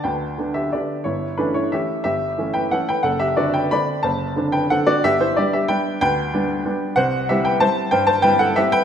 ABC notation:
X:1
M:3/4
L:1/8
Q:1/4=184
K:G
V:1 name="Upright piano"
[Bg]3 [Ge] [Gd]2 | [E^c]2 [DB] [Ec] [Ge]2 | [Ge]3 [Bg] [Af] [Bg] | [Af] [Ge] [Fd] [Bg] [db]2 |
[ca]3 [Bg] [Af] [Fd] | [Ge] [Ec] [Gd] [Ge] [Bg]2 | [Bg]6 | [cf]2 [Ge] [Bg] [ca]2 |
[cg] [ca] [Bg] [Af] [Ge] [Bg] |]
V:2 name="Upright piano"
D,,2 [D,B,D]2 [D,B,D]2 | G,,,2 [E,A,^C]2 [E,A,C]2 | G,,,2 [E,A,^C]2 [E,A,C]2 | F,,,2 [D,CD]2 [D,CD]2 |
F,,,2 [D,CD]2 [D,CD]2 | G,,,2 [G,B,D]2 [G,B,D]2 | D,,2 [G,B,D]2 [G,B,D]2 | C,,2 [G,CE]2 [G,CE]2 |
G,,2 [G,CE]2 [G,CE]2 |]